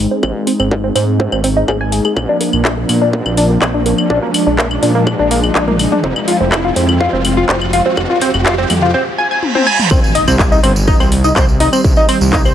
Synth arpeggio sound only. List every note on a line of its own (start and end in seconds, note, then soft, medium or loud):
0.11 0.16 C4 medium
0.23 0.32 C4 medium
0.47 0.53 C4 medium
0.60 0.68 C4 medium
0.84 0.89 C4 medium
0.95 1.04 C4 medium
1.20 1.25 C4 medium
1.32 1.41 C4 medium
1.44 1.49 C4 medium
1.57 1.65 D#4 medium
1.68 1.77 G#4 loud
1.81 1.92 G#5 medium
1.92 2.04 G#4 medium
2.05 2.13 G#4 medium
2.29 2.37 D4 medium
2.41 2.50 A#3 medium
2.65 2.74 D4 medium
2.77 2.86 A#3 medium
3.02 3.10 D4 medium
3.13 3.22 A#3 medium
3.37 3.46 D4 medium
3.50 3.58 A#3 medium
3.74 3.83 D4 medium
3.86 3.95 A#3 medium
4.10 4.19 D4 medium
4.22 4.31 A#3 medium
4.47 4.55 D4 medium
4.58 4.67 A#3 medium
4.82 4.92 D4 medium
4.95 5.03 A#3 medium
5.19 5.28 D4 medium
5.31 5.40 A#3 medium
5.55 5.64 D4 medium
5.68 5.76 A#3 medium
5.92 6.00 D4 medium
6.04 6.13 C4 medium
6.28 6.37 F4 medium
6.40 6.49 C4 medium
6.65 6.73 F4 medium
6.76 6.85 C4 medium
7.00 7.09 F4 medium
7.13 7.21 C4 medium
7.37 7.46 F4 medium
7.49 7.58 C4 medium
7.73 7.82 F4 medium
7.86 7.94 C4 medium
8.10 8.18 F4 medium
8.22 8.30 C4 medium
8.46 8.55 F4 medium
8.58 8.67 C4 medium
8.82 8.91 F4 medium
8.94 9.03 C4 medium
9.18 9.27 G#5 medium
9.31 9.39 G#5 medium
9.55 9.66 C4 medium
9.67 9.79 G#5 loud
9.91 10.00 C4 medium
9.91 10.00 C5 medium
10.15 10.24 D#4 medium
10.15 10.24 D#5 medium
10.28 10.36 C4 medium
10.28 10.36 C5 medium
10.52 10.60 D#4 medium
10.52 10.60 D#5 medium
10.63 10.72 C4 medium
10.63 10.72 C5 medium
10.88 10.96 D#4 medium
10.88 10.97 D#5 medium
11.00 11.08 C4 medium
11.00 11.08 C5 medium
11.24 11.33 D#4 medium
11.24 11.33 D#5 medium
11.36 11.45 C4 medium
11.36 11.45 C5 medium
11.60 11.69 D#4 medium
11.60 11.69 D#5 medium
11.73 11.81 C4 medium
11.73 11.81 C5 medium
11.97 12.05 D#4 medium
11.97 12.05 D#5 medium
12.09 12.18 C4 medium
12.09 12.18 C5 medium
12.33 12.42 D#4 medium
12.33 12.42 D#5 medium
12.45 12.54 C4 medium
12.45 12.54 C5 medium